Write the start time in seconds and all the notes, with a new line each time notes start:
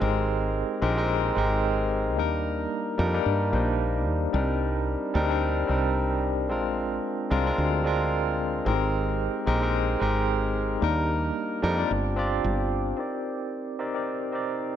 0.00 G#1 G#3 C4 D#4 G4 A#4
0.82 A#1 G#3 C4 D#4 G4 A#4
0.97 G#3 C4 D#4 G4 A#4
1.35 G#1 G#3 C4 D#4 G4 A#4
2.16 D#2 G3 A#3 D4 D#4 A#4
2.98 F2 G3 A#3 D4 D#4 A#4
3.13 G3 A#3 D4 D#4 A#4
3.26 G2
3.52 A#1 G3 A#3 D4 D#4 C5
4.07 D#2
4.33 C2 G3 C4 D4 D#4 A#4
5.14 D2 G3 C4 D4 D#4 A#4
5.29 G3 C4 D4 D#4 A#4
5.68 C2 G3 C4 D4 D#4 A#4
6.49 A#1 G#3 C4 D4 F4 A#4
7.30 C2 G#3 C4 D4 F4 A#4
7.46 G#3 C4 D4 F4 A#4
7.58 D2
7.84 G#3 C4 D4 F4 A#4
8.65 G#1 G#3 C4 D#4 G4 A#4
9.46 A#1 G#3 C4 D#4 G4 A#4
9.62 G#3 C4 D#4 G4 A#4
10.00 G#1 G#3 C4 D#4 G4 A#4
10.81 D#2 G3 A#3 D4 D#4 A#4
11.62 F2 G3 A#3 D4 D#4 A#4
11.77 C4 D4 F4 G4 D5
11.91 G1
12.16 C4 D4 F4 G4 D5
12.44 G1
12.97 C4 D#4 G4 A#4 D5
13.79 C4 D#4 G4 A#4 D5
13.94 C4 D#4 G4 A#4 D5
14.32 C4 D#4 G4 A#4 D5